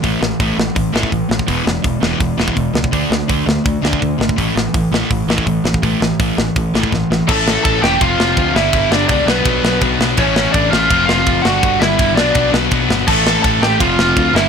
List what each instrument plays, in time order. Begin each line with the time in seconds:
0.02 picked electric bass A1, distorted electric guitar A2 E3 A3, kick, open hi-hat
0.22 picked electric bass A1, distorted electric guitar A2 E3, snare
0.40 picked electric bass A1, distorted electric guitar A2 E3 A3, kick, open hi-hat
0.57 picked electric bass A1, distorted electric guitar A2 E3, snare
0.75 picked electric bass A1, distorted electric guitar A2 E3, kick, open hi-hat
0.92 picked electric bass A1, distorted electric guitar A2 E3 A3, snare
1.03 kick
1.11 picked electric bass A1, distorted electric guitar A2 E3, kick, open hi-hat
1.29 picked electric bass A1, distorted electric guitar A2 E3, snare
1.39 kick
1.46 picked electric bass E1, distorted electric guitar E2 B2 E3 G#3 B3, kick, open hi-hat
1.64 picked electric bass E1, distorted electric guitar E2 B2 E3 G#3, snare
1.82 picked electric bass E1, distorted electric guitar E2 B2 E3 G#3, kick, open hi-hat
2.00 picked electric bass E1, distorted electric guitar E2 B2 E3 G#3 B3, snare
2.19 picked electric bass E1, distorted electric guitar E2 B2 E3 G#3, kick, open hi-hat
2.37 picked electric bass E1, distorted electric guitar E2 B2 E3 G#3 B3, snare
2.48 kick
2.55 picked electric bass E1, distorted electric guitar E2 B2 E3 G#3, kick, open hi-hat
2.73 picked electric bass C#2, distorted electric guitar E2 B2 E3 G#3, snare
2.84 kick
2.91 picked electric bass D2, distorted electric guitar D3 A3 D4, kick, open hi-hat
3.10 picked electric bass D2, distorted electric guitar D3 A3, snare
3.28 picked electric bass D2, distorted electric guitar D3 A3 D4, kick, open hi-hat
3.46 picked electric bass D2, distorted electric guitar D3 A3, snare
3.64 picked electric bass D2, distorted electric guitar D3 A3, kick, open hi-hat
3.82 picked electric bass D2, distorted electric guitar D3 A3 D4, snare
3.93 kick
4.00 picked electric bass D2, distorted electric guitar D3 A3, kick, open hi-hat
4.18 picked electric bass G#1, distorted electric guitar D3 A3, snare
4.29 kick
4.36 picked electric bass A1, distorted electric guitar A2 E3 A3, kick, open hi-hat
4.55 picked electric bass A1, distorted electric guitar A2 E3, snare
4.73 picked electric bass A1, distorted electric guitar A2 E3, kick, open hi-hat
4.91 picked electric bass A1, distorted electric guitar A2 E3 A3, snare
5.10 picked electric bass A1, distorted electric guitar A2 E3, kick, open hi-hat
5.27 picked electric bass A1, distorted electric guitar A2 E3 A3, snare
5.38 kick
5.47 picked electric bass A1, distorted electric guitar A2 E3, kick, open hi-hat
5.64 picked electric bass A1, distorted electric guitar A2 E3, snare
5.74 kick
5.82 picked electric bass A1, distorted electric guitar A2 E3 A3, kick, open hi-hat
6.01 picked electric bass A1, distorted electric guitar A2 E3, snare
6.20 picked electric bass A1, distorted electric guitar A2 E3 A3, kick, open hi-hat
6.37 picked electric bass A1, distorted electric guitar A2 E3, snare
6.56 picked electric bass A1, distorted electric guitar A2 E3, kick, open hi-hat
6.74 picked electric bass A1, distorted electric guitar A2 E3 A3, snare
6.83 kick
6.92 picked electric bass A1, distorted electric guitar A2 E3, kick, snare
7.10 picked electric bass A1, distorted electric guitar A2 E3, snare
7.28 picked electric bass A1, distorted electric guitar A2 E3 A3 C#4 E4, lead electric guitar A4 A5, kick, crash
7.48 snare
7.64 picked electric bass A1, lead electric guitar A4 A5, kick, ride
7.81 picked electric bass E1, distorted electric guitar A2 E3 A3, lead electric guitar G4 G5, snare
7.99 picked electric bass F1, distorted electric guitar F2 C3 F3 A3 C4, lead electric guitar F4 F5, kick, ride
8.03 distorted electric guitar F4
8.18 picked electric bass F1, snare
8.37 picked electric bass D2, kick, ride
8.54 picked electric bass G1, distorted electric guitar G2 D3 G3 B3 D4, lead electric guitar E4 E5, snare
8.73 picked electric bass G1, kick, ride
8.90 picked electric bass G1, lead electric guitar D4 D5, snare
9.08 picked electric bass C#2, distorted electric guitar G2 D3 G3, lead electric guitar D4 D5, kick, ride
9.26 picked electric bass B1, distorted electric guitar B2 F#3 B3 D4, lead electric guitar B3 B4, snare
9.45 picked electric bass B1, kick, ride
9.63 picked electric bass B1, snare
9.81 picked electric bass B1, distorted electric guitar B2 F#3 B3, kick, ride
10.00 picked electric bass B1, snare
10.17 picked electric bass A1, distorted electric guitar A2 E3 A3 C#4 E4, lead electric guitar C#4 C#5, kick, ride
10.36 snare
10.52 picked electric bass A1, lead electric guitar D4 D5, kick, ride
10.71 picked electric bass A1, distorted electric guitar A2 E3 A3, lead electric guitar F4 F5, snare
10.89 picked electric bass F1, distorted electric guitar F2 C3 F3 A3 C4 F4, kick, ride
11.06 picked electric bass F1, lead electric guitar F4 F5, snare
11.26 picked electric bass F#1, kick, ride
11.42 picked electric bass G1, distorted electric guitar G2 D3, lead electric guitar F#4 F#5, snare
11.46 distorted electric guitar G3 B3 D4
11.63 picked electric bass G1, kick, ride
11.80 picked electric bass G1, lead electric guitar E4 E5, snare
11.97 picked electric bass G1, distorted electric guitar G2 D3 G3, kick, ride
12.15 picked electric bass B1, distorted electric guitar B2 F#3 B3, lead electric guitar D4 D5, snare
12.20 distorted electric guitar D4
12.35 picked electric bass B1, kick, ride
12.53 picked electric bass B1, snare
12.71 picked electric bass B1, distorted electric guitar B2 F#3 B3, kick, ride
12.89 picked electric bass G1, snare
13.07 picked electric bass A1, distorted electric guitar A2 E3 A3 C#4 E4, lead electric guitar A4 A5, kick, crash
13.27 snare
13.43 picked electric bass A1, lead electric guitar A4 A5, kick, ride
13.61 picked electric bass A1, distorted electric guitar A2 E3 A3, lead electric guitar G4 G5, snare
13.79 picked electric bass F1, distorted electric guitar F2 C3 F3 A3 C4 F4, lead electric guitar F4 F5, kick, ride
13.98 picked electric bass F1, snare
14.17 picked electric bass D2, kick, ride
14.33 picked electric bass G1, distorted electric guitar G2 D3 G3 B3 D4, lead electric guitar E4 E5, snare